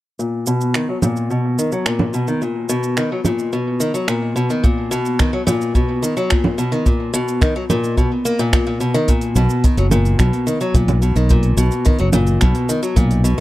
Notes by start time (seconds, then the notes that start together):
0.19 A#2, shaker
0.47 B2, shaker
0.61 shaker
0.74 D#3, finger snap, shaker
0.89 F#3
1.02 A#2, low conga, shaker
1.16 shaker
1.30 B2, shaker
1.59 D#3, shaker
1.72 F#3, shaker
1.86 A#2, finger snap, shaker
1.99 low conga
2.14 B2, shaker
2.28 D#3, shaker
2.42 A#2, shaker
2.69 B2, shaker
2.83 shaker
2.97 D#3, finger snap, shaker
3.12 F#3
3.25 A#2, low conga, shaker
3.39 shaker
3.53 B2, shaker
3.80 D#3, shaker
3.94 F#3, shaker
4.08 A#2, finger snap, shaker
4.36 B2, shaker
4.50 D#3, shaker
4.64 A#2, kick, shaker
4.91 B2, shaker
5.05 shaker
5.19 D#3, finger snap, kick, shaker
5.33 F#3
5.47 A#2, low conga, shaker
5.61 shaker
5.75 B2, kick, shaker
6.02 D#3, shaker
6.17 F#3, shaker
6.30 A#2, finger snap, kick, shaker
6.44 low conga
6.58 B2, shaker
6.72 D#3, shaker
6.86 A#2, kick, shaker
7.14 B2, shaker
7.28 shaker
7.41 D#3, finger snap, kick, shaker
7.56 F#3
7.70 A#2, low conga, shaker
7.84 shaker
7.97 B2, kick, shaker
8.25 A#3, shaker
8.39 A#2, shaker
8.53 A#2, finger snap, kick, shaker
8.67 A#2
8.80 B2, shaker
8.94 D#3, shaker
9.08 A#2, kick, open hi-hat, shaker
9.21 open hi-hat
9.35 B1 B2, shaker
9.50 shaker
9.64 D#3, kick, open hi-hat, shaker
9.77 F#1 F#3, open hi-hat
9.91 A#2, low conga, shaker
10.05 open hi-hat, shaker
10.19 B1 B2, finger snap, kick, open hi-hat, shaker
10.33 open hi-hat
10.47 D#3, shaker
10.61 F#3, shaker
10.74 B1 A#2, kick, open hi-hat, shaker
10.88 open hi-hat, low conga
11.02 B2, shaker
11.16 B1 D#3, open hi-hat, shaker
11.29 A#2, kick, open hi-hat, shaker
11.43 open hi-hat
11.57 B1 B2, shaker
11.71 shaker
11.85 D#3, kick, open hi-hat, shaker
11.99 F#1 F#3, open hi-hat
12.13 A#2, low conga, shaker
12.27 open hi-hat, shaker
12.41 B1 B2, finger snap, kick, open hi-hat, shaker
12.55 open hi-hat
12.69 D#3, shaker
12.83 F#3, shaker
12.96 B1 A#2, kick, open hi-hat, shaker
13.11 open hi-hat
13.24 B2, shaker